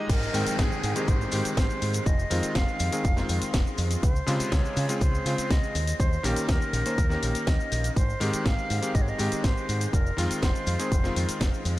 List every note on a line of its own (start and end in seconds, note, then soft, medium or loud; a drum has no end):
0.00 0.31 G#3 medium
0.00 0.31 D#4 medium
0.00 0.11 F4 medium
0.00 0.31 G4 medium
0.00 0.32 D#5 loud
0.00 0.11 F5 medium
0.09 0.26 G#1 loud
0.09 0.60 A#4 medium
0.09 kick loud
0.09 closed hi-hat medium
0.09 crash loud
0.09 downlifter medium
0.09 shaker medium
0.09 maracas soft
0.23 shaker soft
0.33 0.42 G#2 medium
0.33 0.92 D#3 medium
0.33 0.93 G#3 medium
0.33 0.93 C4 medium
0.33 0.93 G5 loud
0.33 open hi-hat loud
0.33 maracas medium
0.46 muted fingered electric bass stroke soft
0.46 closed hi-hat medium
0.46 shaker medium
0.46 maracas medium
0.58 0.67 G#1 medium
0.58 1.09 G#4 medium
0.58 kick loud
0.58 snare loud
0.58 closed hi-hat medium
0.58 maracas soft
0.58 shaker medium
0.72 shaker soft
0.83 0.92 G#2 loud
0.83 open hi-hat medium
0.83 maracas medium
0.95 1.29 D#3 medium
0.95 1.30 G#3 medium
0.95 1.30 C4 medium
0.95 1.30 G4 medium
0.95 closed hi-hat medium
0.95 maracas soft
0.95 shaker medium
1.08 1.25 G#1 loud
1.08 1.56 C5 loud
1.08 kick loud
1.08 closed hi-hat medium
1.08 maracas soft
1.08 shaker medium
1.21 shaker soft
1.32 1.41 G#2 medium
1.32 2.04 D#3 medium
1.32 2.05 G#3 medium
1.32 2.05 C4 medium
1.32 2.05 G4 loud
1.32 open hi-hat loud
1.32 maracas loud
1.45 muted fingered electric bass stroke soft
1.45 closed hi-hat medium
1.45 maracas medium
1.45 shaker medium
1.56 1.65 G#1 medium
1.56 2.07 C5 loud
1.56 kick loud
1.56 snare loud
1.56 closed hi-hat medium
1.56 maracas soft
1.56 shaker medium
1.70 shaker soft
1.82 1.98 G#2 medium
1.82 open hi-hat medium
1.82 maracas medium
1.93 closed hi-hat medium
1.93 maracas soft
1.93 shaker medium
2.06 2.23 F1 loud
2.06 2.57 D#5 loud
2.06 kick loud
2.06 closed hi-hat medium
2.06 maracas soft
2.06 shaker medium
2.19 shaker soft
2.30 2.39 F2 medium
2.30 2.89 D#3 medium
2.30 2.89 G#3 medium
2.30 2.90 C4 medium
2.30 2.90 F4 loud
2.30 open hi-hat loud
2.30 maracas loud
2.43 muted fingered electric bass stroke soft
2.43 closed hi-hat medium
2.43 maracas soft
2.43 shaker medium
2.55 2.64 F1 medium
2.55 3.54 F5 loud
2.55 kick loud
2.55 snare loud
2.55 closed hi-hat medium
2.55 maracas soft
2.55 shaker medium
2.68 shaker soft
2.80 2.88 F2 loud
2.80 open hi-hat loud
2.80 maracas loud
2.92 3.05 D#3 medium
2.92 3.05 G#3 medium
2.92 3.05 C4 medium
2.92 3.05 G#4 medium
2.92 closed hi-hat medium
2.92 maracas medium
2.92 shaker medium
3.04 3.21 F1 loud
3.04 kick loud
3.04 closed hi-hat medium
3.04 maracas soft
3.04 shaker medium
3.16 4.01 D#3 medium
3.16 4.02 G#3 medium
3.16 4.02 C4 medium
3.16 4.02 F4 medium
3.16 snare soft
3.16 shaker soft
3.29 3.38 F2 medium
3.29 open hi-hat loud
3.29 maracas medium
3.41 muted fingered electric bass stroke soft
3.41 closed hi-hat medium
3.41 maracas medium
3.41 shaker medium
3.53 3.62 F1 medium
3.53 kick loud
3.53 snare loud
3.53 closed hi-hat medium
3.53 maracas soft
3.53 shaker medium
3.67 shaker soft
3.78 3.95 F2 medium
3.78 open hi-hat medium
3.78 maracas medium
3.91 closed hi-hat medium
3.91 maracas medium
3.91 shaker medium
4.03 4.20 C#2 loud
4.03 4.54 C5 medium
4.03 kick loud
4.03 closed hi-hat medium
4.03 maracas soft
4.03 shaker medium
4.16 shaker soft
4.26 4.86 C3 medium
4.26 4.86 C#3 medium
4.26 4.36 C#3 medium
4.26 4.86 G#3 medium
4.26 4.87 F4 loud
4.26 open hi-hat loud
4.26 maracas medium
4.40 muted fingered electric bass stroke soft
4.40 closed hi-hat medium
4.40 maracas medium
4.40 shaker medium
4.52 4.61 C#2 medium
4.52 5.01 C#5 loud
4.52 kick loud
4.52 snare loud
4.52 closed hi-hat soft
4.52 maracas soft
4.52 shaker medium
4.65 shaker soft
4.77 4.85 C#3 loud
4.77 open hi-hat loud
4.77 maracas medium
4.89 5.23 C#3 medium
4.89 5.23 G#3 medium
4.89 5.23 C4 medium
4.89 5.23 F4 medium
4.89 closed hi-hat medium
4.89 maracas medium
4.89 shaker medium
5.01 5.18 C#2 medium
5.01 5.53 C5 loud
5.01 kick loud
5.01 closed hi-hat medium
5.01 maracas soft
5.01 shaker medium
5.15 shaker soft
5.25 5.34 C#3 medium
5.25 5.74 C#3 medium
5.25 5.74 G#3 medium
5.25 5.74 C4 medium
5.25 5.74 F4 loud
5.25 open hi-hat loud
5.25 maracas medium
5.38 muted fingered electric bass stroke soft
5.38 closed hi-hat medium
5.38 maracas medium
5.38 shaker medium
5.50 5.59 C#2 medium
5.50 6.02 D#5 loud
5.50 kick loud
5.50 snare loud
5.50 closed hi-hat medium
5.50 maracas soft
5.50 shaker medium
5.64 shaker soft
5.75 5.92 D#2 medium
5.75 open hi-hat loud
5.75 maracas loud
5.87 closed hi-hat medium
5.87 shaker medium
5.87 maracas medium
6.00 6.16 D#2 loud
6.00 6.26 C5 medium
6.00 kick loud
6.00 closed hi-hat medium
6.00 maracas soft
6.00 shaker medium
6.13 shaker soft
6.23 6.33 A#1 medium
6.23 6.82 D#3 medium
6.23 6.83 A#3 medium
6.23 6.83 C#4 medium
6.23 6.83 G4 loud
6.23 6.49 A#4 medium
6.23 open hi-hat loud
6.23 maracas loud
6.36 closed hi-hat medium
6.36 shaker medium
6.36 maracas medium
6.49 6.57 D#2 medium
6.49 7.49 A#4 loud
6.49 kick loud
6.49 snare loud
6.49 closed hi-hat soft
6.49 maracas soft
6.49 shaker medium
6.62 shaker soft
6.73 6.82 A#1 loud
6.73 open hi-hat medium
6.73 maracas loud
6.86 6.98 D#3 medium
6.86 6.99 A#3 medium
6.86 6.99 C#4 medium
6.86 6.99 C5 medium
6.86 closed hi-hat medium
6.86 shaker medium
6.86 maracas medium
6.98 7.15 D#2 loud
6.98 kick loud
6.98 closed hi-hat medium
6.98 maracas soft
6.98 shaker medium
7.09 7.95 D#3 medium
7.09 7.95 A#3 medium
7.09 7.95 C#4 medium
7.09 7.96 G4 medium
7.09 snare soft
7.09 shaker soft
7.23 7.31 A#1 medium
7.23 open hi-hat loud
7.23 maracas medium
7.35 closed hi-hat medium
7.35 shaker medium
7.35 maracas medium
7.47 7.56 D#2 medium
7.47 7.96 D#5 loud
7.47 kick loud
7.47 snare loud
7.47 closed hi-hat medium
7.47 maracas soft
7.47 shaker medium
7.60 shaker soft
7.72 7.89 A#1 medium
7.72 open hi-hat medium
7.72 maracas loud
7.84 closed hi-hat medium
7.84 maracas medium
7.84 shaker medium
7.96 8.13 G#1 loud
7.96 8.47 C5 loud
7.96 kick loud
7.96 closed hi-hat medium
7.96 maracas soft
7.96 shaker medium
8.10 shaker soft
8.20 8.29 G#2 medium
8.20 8.79 D#3 loud
8.20 8.80 G#3 medium
8.20 8.80 C4 medium
8.20 8.80 G4 loud
8.20 open hi-hat loud
8.20 maracas medium
8.33 muted fingered electric bass stroke soft
8.33 closed hi-hat medium
8.33 maracas soft
8.33 shaker medium
8.46 8.54 G#1 loud
8.46 8.96 F5 loud
8.46 kick loud
8.46 snare loud
8.46 closed hi-hat soft
8.46 shaker medium
8.46 maracas soft
8.59 shaker soft
8.70 8.79 G#2 loud
8.70 open hi-hat medium
8.70 maracas medium
8.82 9.16 D#3 medium
8.82 9.16 G#3 medium
8.82 9.17 C4 medium
8.82 9.17 G4 medium
8.82 closed hi-hat medium
8.82 maracas soft
8.82 shaker medium
8.95 9.11 G#1 loud
8.95 9.03 D#5 loud
8.95 kick loud
8.95 closed hi-hat medium
8.95 shaker medium
8.95 maracas soft
9.02 9.11 C#5 medium
9.08 9.46 D#5 loud
9.08 shaker soft
9.18 9.28 G#2 medium
9.18 9.91 D#3 medium
9.18 9.92 G#3 medium
9.18 9.92 C4 medium
9.18 9.92 G4 loud
9.18 open hi-hat loud
9.18 maracas loud
9.32 muted fingered electric bass stroke soft
9.32 closed hi-hat medium
9.32 maracas medium
9.32 shaker medium
9.44 9.52 G#1 medium
9.44 9.93 C5 loud
9.44 kick loud
9.44 snare loud
9.44 closed hi-hat medium
9.44 maracas soft
9.44 shaker medium
9.57 shaker soft
9.69 9.85 G#2 medium
9.69 open hi-hat medium
9.69 maracas medium
9.81 closed hi-hat medium
9.81 maracas soft
9.81 shaker medium
9.93 10.10 F1 loud
9.93 10.39 A#4 medium
9.93 kick loud
9.93 closed hi-hat medium
9.93 maracas soft
9.93 shaker medium
10.06 shaker soft
10.17 10.26 F2 medium
10.17 10.76 D#3 medium
10.17 10.76 G#3 medium
10.17 10.76 C4 medium
10.17 10.77 F4 loud
10.17 open hi-hat loud
10.17 maracas loud
10.30 muted fingered electric bass stroke soft
10.30 closed hi-hat medium
10.30 maracas medium
10.30 shaker medium
10.42 10.51 F1 medium
10.42 11.61 C5 loud
10.42 kick loud
10.42 snare loud
10.42 closed hi-hat medium
10.42 maracas soft
10.42 shaker medium
10.56 shaker soft
10.67 10.75 F2 loud
10.67 open hi-hat medium
10.67 maracas medium
10.79 10.92 D#3 medium
10.79 10.92 G#3 medium
10.79 10.92 C4 medium
10.79 10.92 G#4 medium
10.79 closed hi-hat medium
10.79 maracas medium
10.79 shaker medium
10.92 11.08 F1 loud
10.92 kick loud
10.92 closed hi-hat medium
10.92 shaker medium
10.92 maracas soft
11.03 11.79 D#3 medium
11.03 11.79 G#3 medium
11.03 11.79 C4 medium
11.03 11.79 F4 medium
11.03 snare soft
11.03 shaker soft
11.16 11.24 F2 medium
11.16 open hi-hat loud
11.16 maracas medium
11.28 muted fingered electric bass stroke soft
11.28 closed hi-hat medium
11.28 maracas soft
11.28 shaker medium
11.41 11.49 F1 medium
11.41 kick loud
11.41 snare loud
11.41 closed hi-hat medium
11.41 shaker medium
11.41 maracas soft
11.54 shaker soft
11.65 11.79 F2 medium
11.65 open hi-hat medium
11.65 maracas medium